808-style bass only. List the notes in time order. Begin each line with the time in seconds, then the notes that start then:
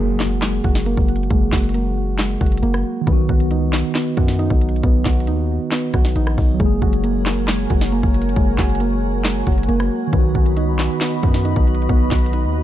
Already playing: F#1
0.64 F#1
0.97 F#1
1.31 F#1
1.53 F#1
2.41 F#1
2.63 F#1
3.07 B1
3.29 B1
3.51 C#2
3.68 B1
4.17 F#2
4.50 B1
4.84 B1
5.06 B1
5.28 D#2
5.94 B1
6.16 A#1
6.38 B1
6.60 F#1
6.82 F#1
7.70 F#1
8.03 F#1
8.36 F#1
8.58 F#1
9.47 F#1
9.69 F#1
10.13 B1
10.35 B1
10.57 C#2
10.73 B1
11.23 F#2
11.56 B1
11.89 B1
12.11 B1
12.45 D#2